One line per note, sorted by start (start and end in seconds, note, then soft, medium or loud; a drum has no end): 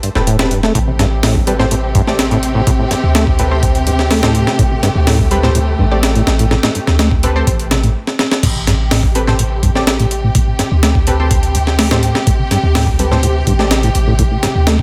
0.03 0.10 G2 medium
0.03 closed hi-hat medium
0.15 0.70 E1 medium
0.15 0.22 A2 medium
0.15 0.32 C4 medium
0.15 0.32 G4 medium
0.15 0.32 A4 medium
0.15 0.32 B4 loud
0.15 snare soft
0.27 0.37 A2 loud
0.27 closed hi-hat medium
0.39 0.46 A2 medium
0.39 0.50 C4 medium
0.39 0.50 G4 medium
0.39 0.50 A4 medium
0.39 0.50 B4 loud
0.39 snare loud
0.51 0.61 G2 medium
0.51 closed hi-hat medium
0.63 0.73 A3 loud
0.63 snare medium
0.75 2.75 A1 loud
0.75 0.79 A2 loud
0.75 7.91 C3 medium
0.75 4.55 C4 medium
0.75 7.91 G4 medium
0.75 kick loud
0.75 closed hi-hat medium
0.87 0.91 C3 medium
0.99 1.06 G2 loud
0.99 snare soft
0.99 closed hi-hat medium
1.23 1.37 A2 loud
1.23 snare loud
1.23 open hi-hat medium
1.35 1.42 G2 medium
1.35 kick medium
1.47 1.54 G3 medium
1.47 1.57 C4 medium
1.47 1.57 G4 medium
1.47 1.58 A4 medium
1.47 1.57 B4 medium
1.47 closed hi-hat medium
1.59 1.66 A2 loud
1.59 1.70 C4 loud
1.59 1.70 G4 medium
1.59 1.70 A4 medium
1.59 1.70 C5 loud
1.59 snare soft
1.71 1.75 A2 loud
1.71 closed hi-hat medium
1.95 2.02 G2 loud
1.95 kick loud
1.95 closed hi-hat medium
2.07 2.14 A3 medium
2.07 2.18 C4 medium
2.07 2.18 G4 medium
2.07 2.18 A4 medium
2.07 2.18 D5 medium
2.07 snare soft
2.19 snare loud
2.19 closed hi-hat medium
2.31 2.38 A2 loud
2.31 closed hi-hat soft
2.43 closed hi-hat medium
2.55 2.62 A2 loud
2.67 2.71 A2 loud
2.67 kick loud
2.67 closed hi-hat medium
2.79 2.86 A2 medium
2.91 2.95 G2 medium
2.91 snare medium
2.91 closed hi-hat medium
3.04 4.43 D2 medium
3.15 3.25 A3 loud
3.15 snare loud
3.15 closed hi-hat medium
3.27 kick loud
3.39 3.43 A2 medium
3.39 3.50 C4 medium
3.39 3.50 G4 medium
3.39 3.50 A4 medium
3.39 3.50 B4 loud
3.39 closed hi-hat medium
3.51 3.62 C4 medium
3.51 3.62 G4 medium
3.51 3.62 A4 medium
3.51 3.62 C5 loud
3.63 kick loud
3.63 closed hi-hat medium
3.75 closed hi-hat soft
3.87 3.91 G2 medium
3.87 closed hi-hat medium
3.99 snare soft
4.11 4.21 A3 loud
4.11 snare loud
4.11 open hi-hat medium
4.23 4.49 A2 loud
4.23 5.28 C4 medium
4.23 5.28 G4 medium
4.23 5.28 A4 medium
4.23 5.28 C5 loud
4.23 snare loud
4.35 closed hi-hat medium
4.47 4.51 B2 medium
4.47 snare medium
4.59 4.63 A2 loud
4.59 7.92 A3 medium
4.59 kick loud
4.59 closed hi-hat medium
4.71 4.75 C3 medium
4.83 4.90 G2 loud
4.83 snare medium
4.83 closed hi-hat medium
4.95 5.74 D2 medium
5.07 5.21 A2 loud
5.07 snare loud
5.07 open hi-hat medium
5.19 5.26 G2 medium
5.19 kick loud
5.31 5.38 G3 medium
5.31 5.42 C4 medium
5.31 5.42 G4 medium
5.31 5.42 A4 medium
5.31 5.42 B4 medium
5.31 closed hi-hat medium
5.43 5.50 A2 loud
5.43 5.54 C4 loud
5.43 5.54 G4 medium
5.43 5.54 A4 medium
5.43 5.54 C5 loud
5.43 snare soft
5.55 5.59 A2 loud
5.55 closed hi-hat medium
5.79 6.22 A1 medium
5.79 5.86 G2 loud
5.91 5.98 A3 medium
5.91 6.02 C4 medium
5.91 6.02 G4 medium
5.91 6.02 A4 medium
5.91 6.02 D5 medium
6.03 snare loud
6.03 closed hi-hat medium
6.15 6.22 A2 loud
6.15 closed hi-hat soft
6.27 6.58 A1 loud
6.27 snare loud
6.39 6.46 A2 loud
6.39 closed hi-hat medium
6.51 6.55 A2 loud
6.51 snare medium
6.63 6.70 A2 medium
6.63 snare loud
6.75 6.79 G2 medium
6.75 closed hi-hat medium
6.87 7.42 D2 medium
6.87 snare medium
6.99 7.09 A3 loud
6.99 snare loud
6.99 closed hi-hat medium
7.11 kick loud
7.23 7.27 A2 medium
7.23 7.34 C4 loud
7.23 7.34 G4 medium
7.23 7.34 A4 medium
7.23 7.34 B4 loud
7.23 closed hi-hat medium
7.36 7.46 C4 medium
7.36 7.46 G4 medium
7.36 7.46 A4 medium
7.36 7.46 C5 loud
7.47 7.95 A1 medium
7.47 kick loud
7.47 closed hi-hat medium
7.59 closed hi-hat soft
7.71 7.78 C3 medium
7.71 snare loud
7.71 closed hi-hat medium
7.83 7.90 A2 loud
7.83 closed hi-hat soft
8.07 snare medium
8.19 snare medium
8.32 snare medium
8.43 10.42 A1 medium
8.43 8.47 A2 loud
8.43 14.82 C3 medium
8.43 14.82 G4 medium
8.43 kick loud
8.43 closed hi-hat medium
8.43 crash medium
8.55 8.59 C3 medium
8.67 8.74 G2 loud
8.67 snare medium
8.67 closed hi-hat medium
8.91 9.05 A2 loud
8.91 snare loud
8.91 open hi-hat medium
9.03 9.10 G2 medium
9.03 kick loud
9.15 9.22 G3 medium
9.15 9.26 C4 medium
9.15 9.26 G4 medium
9.15 9.26 A4 medium
9.15 9.26 B4 medium
9.15 closed hi-hat medium
9.27 9.34 A2 loud
9.27 9.38 C4 loud
9.27 9.38 G4 medium
9.27 9.38 A4 medium
9.27 9.38 C5 loud
9.27 snare soft
9.39 9.43 A2 loud
9.39 closed hi-hat medium
9.63 9.70 G2 loud
9.63 kick loud
9.63 closed hi-hat medium
9.75 9.82 A3 medium
9.75 9.86 C4 medium
9.75 9.86 G4 medium
9.75 9.86 A4 medium
9.75 9.86 D5 medium
9.75 snare soft
9.87 snare loud
9.87 closed hi-hat medium
10.00 10.06 A2 loud
10.00 closed hi-hat soft
10.11 closed hi-hat medium
10.24 10.30 A2 loud
10.35 10.39 A2 loud
10.35 kick loud
10.35 closed hi-hat medium
10.47 10.54 A2 medium
10.59 10.63 G2 medium
10.59 snare medium
10.59 closed hi-hat medium
10.72 12.11 D2 medium
10.83 10.93 A3 loud
10.83 snare loud
10.83 closed hi-hat medium
10.95 kick loud
11.07 11.11 A2 medium
11.07 11.18 C4 medium
11.07 11.18 G4 medium
11.07 11.18 A4 medium
11.07 11.18 B4 loud
11.07 closed hi-hat medium
11.20 11.30 C4 medium
11.20 11.30 G4 medium
11.20 11.30 A4 medium
11.20 11.30 C5 loud
11.31 kick loud
11.31 closed hi-hat medium
11.43 closed hi-hat soft
11.55 11.59 G2 medium
11.55 closed hi-hat medium
11.67 snare soft
11.79 11.89 A3 loud
11.79 snare loud
11.79 open hi-hat medium
11.91 12.16 A2 loud
11.91 12.96 C4 medium
11.91 12.96 G4 medium
11.91 12.96 A4 medium
11.91 12.96 C5 loud
11.91 snare loud
12.03 closed hi-hat medium
12.15 12.19 B2 medium
12.15 snare medium
12.27 12.31 A2 loud
12.27 kick loud
12.27 closed hi-hat medium
12.39 12.43 C3 medium
12.51 12.58 G2 loud
12.51 snare medium
12.51 closed hi-hat medium
12.63 13.42 D2 medium
12.75 12.88 A2 loud
12.75 snare loud
12.75 open hi-hat medium
12.87 12.94 G2 medium
12.87 kick loud
12.99 13.06 G3 medium
12.99 13.10 C4 medium
12.99 13.10 G4 medium
12.99 13.10 A4 medium
12.99 13.10 B4 medium
12.99 closed hi-hat medium
13.11 13.18 A2 loud
13.11 13.22 C4 loud
13.11 13.22 G4 medium
13.11 13.22 A4 medium
13.11 13.22 C5 loud
13.11 snare soft
13.23 13.27 A2 loud
13.23 closed hi-hat medium
13.47 13.90 A1 medium
13.47 13.54 G2 loud
13.47 kick loud
13.47 closed hi-hat medium
13.59 13.66 A3 medium
13.59 13.70 C4 medium
13.59 13.70 G4 medium
13.59 13.70 A4 medium
13.59 13.70 D5 medium
13.59 snare soft
13.71 snare loud
13.71 closed hi-hat medium
13.83 13.90 A2 loud
13.83 closed hi-hat soft
13.95 14.26 A1 loud
13.95 closed hi-hat medium
14.07 14.14 A2 loud
14.19 14.23 A2 loud
14.19 kick loud
14.19 closed hi-hat medium
14.31 14.38 A2 medium
14.43 14.47 G2 medium
14.43 snare medium
14.43 closed hi-hat medium
14.55 14.82 D2 medium
14.67 14.77 A3 loud
14.67 snare loud
14.67 closed hi-hat medium
14.79 kick loud